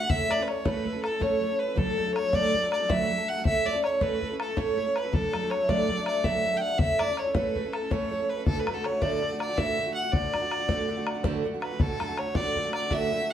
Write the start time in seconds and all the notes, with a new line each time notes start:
Already playing: F#5
0.00 D3 D4
0.08 A2 A3 C#4 E4 A4 E5, bodhran
0.20 bodhran
0.28 A3 C#4 E4 A4 D5, bodhran
0.37 C#4 E4 A4
0.42 B4
0.47 C#5, bodhran
0.54 C#4 E4 A4
0.64 A2 A3 C#4 E4 A4 B4, bodhran
0.85 A3 C#4 E4 A4, bodhran
0.93 C#4 E4 A4
1.03 A4, bodhran
1.10 C#4 E4 A4
1.20 A2 A3 C#4 E4 A4 C#5, bodhran
1.41 A3 C#4 E4 A4
1.48 C#4 E4 A4 C#5
1.59 B4
1.67 C#4 E4 A4
1.75 D2 A2 F#3 A3 D4 A4, bodhran
1.88 A4, bodhran
1.96 F#3 A3 D4 A4
2.04 A3 D4 A4
2.08 F#3
2.14 C#5, bodhran
2.24 F#3 A3 D4 A4
2.33 D2 A2 F#3 A3 D4 A4 D5, bodhran
2.53 F#3 A3 D4 A4, bodhran
2.62 F#3 A3 D4 A4
2.72 D5, bodhran
2.80 F#3 A3 D4 A4
2.89 D2 A2 F#3 A3 D4 A4 E5, bodhran
3.09 F#3 A3 D4 A4
3.18 F#3 A3 D4 A4
3.28 F#5
3.35 F#3 A3 D4 A4
3.44 A2 A3 C#4 E4 A4 E5, bodhran
3.56 bodhran
3.65 A3 C#4 E4 A4 D5
3.72 C#4 E4 A4
3.84 C#5, bodhran
3.92 C#4 E4 A4
4.00 A2 A3 C#4 E4 A4 B4, bodhran
4.20 A3 C#4 E4 A4, bodhran
4.30 C#4 E4 A4
4.40 A4, bodhran
4.47 C#4 E4 A4
4.56 A2 A3 C#4 E4 A4 C#5, bodhran
4.76 A3 C#4 E4 A4 C#5
4.85 C#4 E4 A4
4.96 B4, bodhran
5.03 C#4 E4 A4
5.11 D2 A2 F#3 A3 D4 A4, bodhran
5.32 F#3 A3 D4 A4, bodhran
5.42 F#3 A3 D4 A4
5.50 C#5, bodhran
5.59 F#3 A3 D4 A4
5.63 E5
5.68 D2 A2 F#3 A3 D4 A4 D5, bodhran
5.88 F#3 A3 D4 A4, bodhran
5.97 F#3 A3 D4 A4
6.03 E5, bodhran
6.08 D5
6.15 F#3 A3 D4 A4
6.24 D2 A2 F#3 A3 D4 A4 E5, bodhran
6.41 E5 F#5
6.45 F#3 A3 D4 A4
6.54 F#3 A3 D4 A4 G5
6.59 D5 E5 F#5
6.70 F#3 A3 D4 A4
6.78 A2 A3 C#4 E4 A4 E5, bodhran
6.90 bodhran
6.99 A3 C#4 E4 A4 D5, bodhran
7.08 C#4 E4 A4
7.17 C#5, bodhran
7.25 C#4 E4 A4
7.30 C#5
7.35 A2 A3 C#4 E4 A4 B4, bodhran
7.55 A3 C#4 E4 A4, bodhran
7.65 C#4 E4 A4
7.73 A4, bodhran
7.82 C#4 E4 A4
7.90 A2 A3 C#4 E4 A4 C#5, bodhran
8.11 A3 C#4 E4 A4
8.20 C#4 E4 A4
8.30 B4
8.37 C#4 E4 A4
8.45 D2 A2 D3 A3 D4 F#4 A4, bodhran
8.57 B4, bodhran
8.66 D3 A3 D4 F#4, bodhran
8.73 D3 A3 D4 F#4 A4
8.84 C#5, bodhran
8.91 D3 A3 D4 F#4
8.97 D2 E5
9.02 A2 D3 A3 D4 F#4 D5, bodhran
9.21 D3 A3 D4 F#4
9.32 D3 A3 D4 F#4
9.40 D5, bodhran
9.49 D3 A3 D4 F#4
9.56 D2 A2 D3 A3 D4 F#4 E5, bodhran
9.78 D3 A3 D4 F#4
9.86 D3 A3 D4 F#4
9.94 F#5
10.03 D3 A3 D4 F#4
10.12 D2 A2 D3 A3 D4 F#4 D5, bodhran
10.24 bodhran
10.33 D3 A3 D4 F#4, bodhran
10.41 D3 A3 D4 F#4
10.51 bodhran
10.59 D3 A3 D4 F#4
10.68 D2 A2 D3 A3 D4 F#4, bodhran
10.87 D3 A3 D4 F#4
10.97 D3 A3 D4 F#4
11.07 bodhran
11.14 D3 A3 D4 F#4
11.23 D2 A2 D3 A3 D4 F#4, bodhran
11.44 D3 A3 D4 F#4
11.54 D3 A3 D4 F#4
11.61 B4, bodhran
11.71 D3 A3 D4 F#4
11.79 D2 A2 D3 A3 D4 F#4 A4, bodhran
11.90 bodhran
11.99 D3 A3 D4 F#4, bodhran
12.08 D3 A3 D4 F#4
12.17 C#5, bodhran
12.26 D3 A3 D4 F#4
12.35 D2 A2 D3 A3 D4 F#4 D5, bodhran
12.55 D3 A3 D4 F#4, bodhran
12.64 D3 A3 D4 F#4
12.73 D5, bodhran
12.82 D3 A3 D4 F#4
12.90 D2 A2 D3 A3 D4 F#4 E5, bodhran
13.11 D3 A3 D4 F#4
13.20 D3 A3 D4 F#4